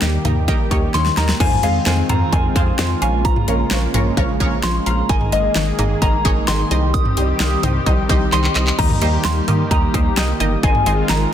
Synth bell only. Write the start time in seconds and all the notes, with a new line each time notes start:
Already playing: G5
0.94 C6
1.17 A#5
1.40 G#5
1.63 F5
1.87 G#5
2.09 A#5
2.33 G#5
3.02 G#5
3.25 A#5
4.63 C6
4.87 A#5
5.10 G#5
5.33 D#5
6.02 A#5
6.48 C6
6.94 D#6
8.33 C6
8.79 A#5
9.25 C6
9.71 A#5
10.64 G#5
11.10 A#5